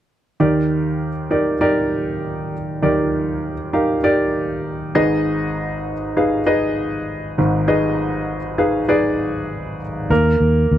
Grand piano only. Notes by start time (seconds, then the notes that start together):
0.40 D#2 D#3 D#4 G4 A#4 D5
1.31 D#4 G4 A#4 D5
1.61 D#4 G4 A#4 D5
2.82 D#2 D#3 D#4 G4 A#4 D5
3.73 D#4 G4 A#4 F5
4.03 D#4 G4 A#4 D5
4.95 G#1 G#2 D#4 G#4 B4 D#5
6.17 D#4 G#4 B4 F5
6.46 D#4 G#4 B4 D#5
7.38 G#1 G#2
7.68 D#4 G#4 B4 D#5
8.58 D#4 G#4 B4 F5
8.88 D#4 G#4 B4 D5
10.10 A#3 A#4